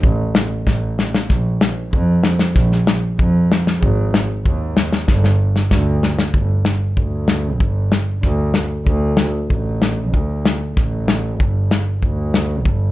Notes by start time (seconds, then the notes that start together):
0.03 A1, kick
0.35 snare
0.66 A1, kick, snare
0.99 snare
1.15 snare
1.29 A#1, kick, snare
1.61 snare
1.92 F2, kick
2.23 snare
2.39 snare
2.55 A#1, kick, snare
2.72 snare
2.87 snare
3.19 F2, kick
3.52 snare
3.67 snare
3.82 G#1, kick
4.14 snare
4.45 D#2, kick
4.77 snare
4.92 snare
5.08 G1, kick, snare
5.24 snare
5.56 snare
5.71 D2, kick, snare
6.03 snare
6.19 snare
6.34 G1, kick
6.65 snare
6.96 D2, kick
7.28 snare
7.60 G1, kick
7.92 snare
8.23 D2, kick, snare
8.54 snare
8.86 D2, kick
9.17 snare
9.50 A1, kick
9.82 snare
10.13 D2, kick
10.45 snare
10.77 A1, kick, snare
11.08 snare
11.40 G1, kick
11.71 snare
12.02 D2, kick
12.34 snare
12.65 G1, kick